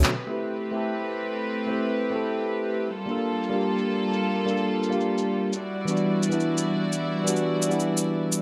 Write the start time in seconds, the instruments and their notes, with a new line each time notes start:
Already playing: tine electric piano B2 D3 F#3 A3 C#4
0.04 clap
0.12 string section A3 C4 G4 B4
0.27 tine electric piano A3 C4 E4
0.31 tine electric piano G4 B4
0.71 tine electric piano A3 C4 E4 G4
0.76 tine electric piano A4
1.67 tine electric piano A3 C4 E4 G4, shaker
1.72 tine electric piano B4
2.04 shaker
2.10 tine electric piano A3 C4 E4, shaker
2.14 tine electric piano G4 A4
2.21 shaker
2.39 shaker
2.74 shaker
2.91 string section G3 A#3 F4 A4
3.06 tine electric piano G3 A#3 D4 F4, shaker
3.11 tine electric piano A4
3.18 shaker
3.43 shaker
3.50 tine electric piano G3 A#3 D4, shaker
3.54 tine electric piano F4 G4
3.61 shaker
3.78 shaker
4.13 shaker
4.45 tine electric piano G3 A#3 D4, shaker
4.49 tine electric piano F4 A4
4.57 shaker
4.83 shaker
4.89 tine electric piano G3 A#3 D4 F4, shaker
4.95 tine electric piano G4
5.01 shaker
5.18 shaker
5.53 string section E4 F#4 D5, shaker
5.85 tine electric piano E3 G3 B3, shaker
5.89 tine electric piano D4 F#4
5.97 shaker
6.23 shaker
6.29 tine electric piano E3 G3 B3, shaker
6.33 tine electric piano D4 E4
6.40 shaker
6.57 shaker
6.92 shaker
7.24 tine electric piano E3 G3 B3, shaker
7.29 tine electric piano D4 F#4
7.36 shaker
7.62 shaker
7.68 tine electric piano E3 G3 B3, shaker
7.72 tine electric piano D4 E4
7.80 shaker
7.97 shaker
8.32 shaker